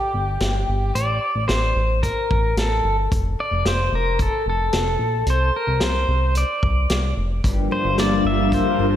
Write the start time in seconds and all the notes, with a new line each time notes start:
Already playing: G4
0.14 G1
0.40 G1, snare, closed hi-hat
0.68 G1
0.95 A1 D5, closed hi-hat
1.35 A1
1.48 A1 C5, snare, closed hi-hat
1.76 A1
2.03 A#4, kick, closed hi-hat
2.31 A1, kick
2.57 A1 A4, snare, closed hi-hat
2.84 G1
3.12 F1, kick, closed hi-hat
3.40 D5
3.51 F1
3.65 F1 C5, snare, closed hi-hat
3.92 F1 A#4
4.19 A4, kick, closed hi-hat
4.46 F1 A4
4.73 F1, snare, closed hi-hat
4.99 A#1
5.27 C2 C5, closed hi-hat
5.56 A#4
5.67 C2
5.80 C2 C5, snare, closed hi-hat
6.08 C2
6.35 D5, closed hi-hat
6.63 C2, kick
6.90 C2, snare, closed hi-hat
7.17 F1
7.44 G1 G2 G3 D4 F4 A#4 E5, kick, closed hi-hat
7.71 F3 C5
7.85 G1
7.97 G1 A#3 D5, snare, closed hi-hat
8.25 G1 F4 E5
8.52 D3 C5, kick, closed hi-hat
8.79 G1 A#3